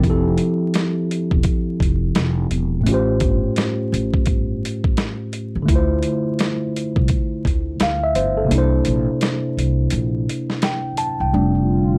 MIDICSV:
0, 0, Header, 1, 5, 480
1, 0, Start_track
1, 0, Key_signature, -1, "major"
1, 0, Tempo, 705882
1, 24, Time_signature, 4, 2, 24, 8
1, 8146, End_track
2, 0, Start_track
2, 0, Title_t, "Tine electric piano"
2, 0, Program_c, 0, 4
2, 0, Control_c, 0, 64, 127
2, 0, Note_on_c, 0, 53, 70
2, 0, Note_on_c, 0, 60, 66
2, 21, Note_on_c, 0, 64, 58
2, 33, Control_c, 0, 64, 0
2, 45, Note_on_c, 0, 67, 57
2, 67, Note_on_c, 0, 69, 76
2, 151, Control_c, 0, 64, 127
2, 1894, Note_off_c, 0, 53, 0
2, 1905, Note_off_c, 0, 60, 0
2, 1910, Note_on_c, 0, 45, 65
2, 1916, Note_off_c, 0, 64, 0
2, 1927, Note_off_c, 0, 67, 0
2, 1928, Note_on_c, 0, 57, 64
2, 1939, Note_off_c, 0, 69, 0
2, 1946, Note_on_c, 0, 61, 60
2, 1953, Control_c, 0, 64, 0
2, 1964, Note_on_c, 0, 65, 61
2, 1981, Note_on_c, 0, 67, 67
2, 1999, Note_on_c, 0, 72, 80
2, 2056, Control_c, 0, 64, 127
2, 3820, Note_off_c, 0, 45, 0
2, 3824, Note_on_c, 0, 50, 61
2, 3829, Note_off_c, 0, 57, 0
2, 3838, Note_off_c, 0, 61, 0
2, 3846, Note_on_c, 0, 57, 65
2, 3847, Note_off_c, 0, 65, 0
2, 3856, Note_off_c, 0, 67, 0
2, 3864, Note_off_c, 0, 72, 0
2, 3868, Note_on_c, 0, 64, 71
2, 3872, Control_c, 0, 64, 0
2, 3892, Note_on_c, 0, 65, 61
2, 3914, Note_on_c, 0, 72, 80
2, 3987, Control_c, 0, 64, 127
2, 5257, Note_off_c, 0, 50, 0
2, 5268, Note_off_c, 0, 57, 0
2, 5279, Note_off_c, 0, 64, 0
2, 5291, Note_off_c, 0, 65, 0
2, 5302, Note_off_c, 0, 72, 0
2, 5323, Note_on_c, 0, 77, 67
2, 5456, Note_off_c, 0, 77, 0
2, 5464, Note_on_c, 0, 76, 67
2, 5545, Note_off_c, 0, 76, 0
2, 5547, Note_on_c, 0, 72, 64
2, 5688, Note_off_c, 0, 72, 0
2, 5694, Note_on_c, 0, 69, 63
2, 5746, Note_on_c, 0, 48, 77
2, 5768, Note_on_c, 0, 58, 62
2, 5790, Note_on_c, 0, 62, 66
2, 5793, Control_c, 0, 64, 0
2, 5813, Note_on_c, 0, 64, 69
2, 5835, Note_on_c, 0, 72, 78
2, 5906, Control_c, 0, 64, 127
2, 5922, Note_off_c, 0, 69, 0
2, 7235, Note_on_c, 0, 79, 59
2, 7418, Note_off_c, 0, 48, 0
2, 7429, Note_off_c, 0, 58, 0
2, 7440, Note_off_c, 0, 62, 0
2, 7451, Note_off_c, 0, 64, 0
2, 7458, Note_off_c, 0, 79, 0
2, 7463, Note_off_c, 0, 72, 0
2, 7465, Note_on_c, 0, 81, 61
2, 7607, Note_off_c, 0, 81, 0
2, 7623, Note_on_c, 0, 79, 59
2, 7705, Note_on_c, 0, 55, 50
2, 7709, Note_on_c, 0, 57, 53
2, 7712, Control_c, 0, 64, 0
2, 7714, Note_on_c, 0, 62, 59
2, 7847, Note_off_c, 0, 79, 0
2, 7849, Control_c, 0, 64, 127
2, 8146, Note_off_c, 0, 55, 0
2, 8146, Note_off_c, 0, 57, 0
2, 8146, Note_off_c, 0, 62, 0
2, 8146, End_track
3, 0, Start_track
3, 0, Title_t, "Ambient pad"
3, 0, Program_c, 1, 92
3, 7702, Note_on_c, 1, 50, 86
3, 7703, Note_on_c, 1, 57, 78
3, 7703, Note_on_c, 1, 65, 97
3, 7704, Note_on_c, 1, 55, 74
3, 8146, Note_off_c, 1, 50, 0
3, 8146, Note_off_c, 1, 55, 0
3, 8146, Note_off_c, 1, 57, 0
3, 8146, Note_off_c, 1, 65, 0
3, 8146, End_track
4, 0, Start_track
4, 0, Title_t, "Upright bass"
4, 0, Program_c, 2, 32
4, 25, Note_on_c, 2, 29, 104
4, 249, Note_off_c, 2, 29, 0
4, 895, Note_on_c, 2, 28, 82
4, 979, Note_off_c, 2, 28, 0
4, 1226, Note_on_c, 2, 29, 80
4, 1449, Note_off_c, 2, 29, 0
4, 1466, Note_on_c, 2, 29, 84
4, 1689, Note_off_c, 2, 29, 0
4, 1707, Note_on_c, 2, 28, 85
4, 1930, Note_off_c, 2, 28, 0
4, 1947, Note_on_c, 2, 33, 97
4, 2170, Note_off_c, 2, 33, 0
4, 2185, Note_on_c, 2, 31, 85
4, 2325, Note_off_c, 2, 31, 0
4, 2668, Note_on_c, 2, 33, 84
4, 2906, Note_off_c, 2, 33, 0
4, 2906, Note_on_c, 2, 31, 94
4, 3130, Note_off_c, 2, 31, 0
4, 3777, Note_on_c, 2, 33, 76
4, 3860, Note_off_c, 2, 33, 0
4, 3868, Note_on_c, 2, 38, 103
4, 4091, Note_off_c, 2, 38, 0
4, 4735, Note_on_c, 2, 36, 83
4, 4819, Note_off_c, 2, 36, 0
4, 5068, Note_on_c, 2, 38, 93
4, 5291, Note_off_c, 2, 38, 0
4, 5308, Note_on_c, 2, 38, 78
4, 5531, Note_off_c, 2, 38, 0
4, 5547, Note_on_c, 2, 31, 75
4, 5770, Note_off_c, 2, 31, 0
4, 5788, Note_on_c, 2, 36, 101
4, 6011, Note_off_c, 2, 36, 0
4, 6028, Note_on_c, 2, 34, 99
4, 6167, Note_off_c, 2, 34, 0
4, 6510, Note_on_c, 2, 36, 69
4, 6732, Note_off_c, 2, 36, 0
4, 6748, Note_on_c, 2, 34, 92
4, 6971, Note_off_c, 2, 34, 0
4, 7617, Note_on_c, 2, 36, 74
4, 7700, Note_off_c, 2, 36, 0
4, 7710, Note_on_c, 2, 29, 94
4, 8146, Note_off_c, 2, 29, 0
4, 8146, End_track
5, 0, Start_track
5, 0, Title_t, "Drums"
5, 24, Note_on_c, 9, 36, 111
5, 27, Note_on_c, 9, 42, 80
5, 92, Note_off_c, 9, 36, 0
5, 95, Note_off_c, 9, 42, 0
5, 256, Note_on_c, 9, 42, 62
5, 324, Note_off_c, 9, 42, 0
5, 502, Note_on_c, 9, 42, 72
5, 513, Note_on_c, 9, 38, 88
5, 570, Note_off_c, 9, 42, 0
5, 581, Note_off_c, 9, 38, 0
5, 756, Note_on_c, 9, 42, 64
5, 824, Note_off_c, 9, 42, 0
5, 892, Note_on_c, 9, 36, 89
5, 960, Note_off_c, 9, 36, 0
5, 975, Note_on_c, 9, 42, 81
5, 983, Note_on_c, 9, 36, 94
5, 1043, Note_off_c, 9, 42, 0
5, 1051, Note_off_c, 9, 36, 0
5, 1225, Note_on_c, 9, 36, 84
5, 1241, Note_on_c, 9, 42, 66
5, 1293, Note_off_c, 9, 36, 0
5, 1309, Note_off_c, 9, 42, 0
5, 1462, Note_on_c, 9, 42, 69
5, 1468, Note_on_c, 9, 38, 111
5, 1530, Note_off_c, 9, 42, 0
5, 1536, Note_off_c, 9, 38, 0
5, 1706, Note_on_c, 9, 42, 66
5, 1774, Note_off_c, 9, 42, 0
5, 1948, Note_on_c, 9, 42, 88
5, 2016, Note_off_c, 9, 42, 0
5, 2177, Note_on_c, 9, 42, 70
5, 2183, Note_on_c, 9, 36, 79
5, 2245, Note_off_c, 9, 42, 0
5, 2251, Note_off_c, 9, 36, 0
5, 2423, Note_on_c, 9, 42, 71
5, 2434, Note_on_c, 9, 38, 85
5, 2491, Note_off_c, 9, 42, 0
5, 2502, Note_off_c, 9, 38, 0
5, 2678, Note_on_c, 9, 42, 60
5, 2746, Note_off_c, 9, 42, 0
5, 2812, Note_on_c, 9, 36, 90
5, 2880, Note_off_c, 9, 36, 0
5, 2894, Note_on_c, 9, 42, 78
5, 2903, Note_on_c, 9, 36, 89
5, 2962, Note_off_c, 9, 42, 0
5, 2971, Note_off_c, 9, 36, 0
5, 3163, Note_on_c, 9, 42, 63
5, 3231, Note_off_c, 9, 42, 0
5, 3293, Note_on_c, 9, 36, 90
5, 3361, Note_off_c, 9, 36, 0
5, 3380, Note_on_c, 9, 42, 66
5, 3386, Note_on_c, 9, 38, 109
5, 3448, Note_off_c, 9, 42, 0
5, 3454, Note_off_c, 9, 38, 0
5, 3624, Note_on_c, 9, 42, 63
5, 3692, Note_off_c, 9, 42, 0
5, 3866, Note_on_c, 9, 36, 127
5, 3868, Note_on_c, 9, 42, 90
5, 3934, Note_off_c, 9, 36, 0
5, 3936, Note_off_c, 9, 42, 0
5, 4098, Note_on_c, 9, 42, 65
5, 4166, Note_off_c, 9, 42, 0
5, 4345, Note_on_c, 9, 42, 69
5, 4356, Note_on_c, 9, 38, 92
5, 4413, Note_off_c, 9, 42, 0
5, 4424, Note_off_c, 9, 38, 0
5, 4600, Note_on_c, 9, 42, 55
5, 4668, Note_off_c, 9, 42, 0
5, 4733, Note_on_c, 9, 36, 87
5, 4801, Note_off_c, 9, 36, 0
5, 4815, Note_on_c, 9, 42, 81
5, 4824, Note_on_c, 9, 36, 91
5, 4883, Note_off_c, 9, 42, 0
5, 4892, Note_off_c, 9, 36, 0
5, 5065, Note_on_c, 9, 36, 83
5, 5081, Note_on_c, 9, 42, 58
5, 5133, Note_off_c, 9, 36, 0
5, 5149, Note_off_c, 9, 42, 0
5, 5302, Note_on_c, 9, 42, 78
5, 5308, Note_on_c, 9, 38, 108
5, 5370, Note_off_c, 9, 42, 0
5, 5376, Note_off_c, 9, 38, 0
5, 5544, Note_on_c, 9, 42, 68
5, 5612, Note_off_c, 9, 42, 0
5, 5788, Note_on_c, 9, 42, 88
5, 5856, Note_off_c, 9, 42, 0
5, 6017, Note_on_c, 9, 42, 66
5, 6085, Note_off_c, 9, 42, 0
5, 6263, Note_on_c, 9, 42, 80
5, 6274, Note_on_c, 9, 38, 95
5, 6331, Note_off_c, 9, 42, 0
5, 6342, Note_off_c, 9, 38, 0
5, 6519, Note_on_c, 9, 42, 65
5, 6587, Note_off_c, 9, 42, 0
5, 6735, Note_on_c, 9, 42, 83
5, 6803, Note_off_c, 9, 42, 0
5, 7000, Note_on_c, 9, 42, 68
5, 7068, Note_off_c, 9, 42, 0
5, 7138, Note_on_c, 9, 38, 36
5, 7206, Note_off_c, 9, 38, 0
5, 7221, Note_on_c, 9, 42, 68
5, 7227, Note_on_c, 9, 38, 111
5, 7289, Note_off_c, 9, 42, 0
5, 7295, Note_off_c, 9, 38, 0
5, 7461, Note_on_c, 9, 42, 68
5, 7529, Note_off_c, 9, 42, 0
5, 8146, End_track
0, 0, End_of_file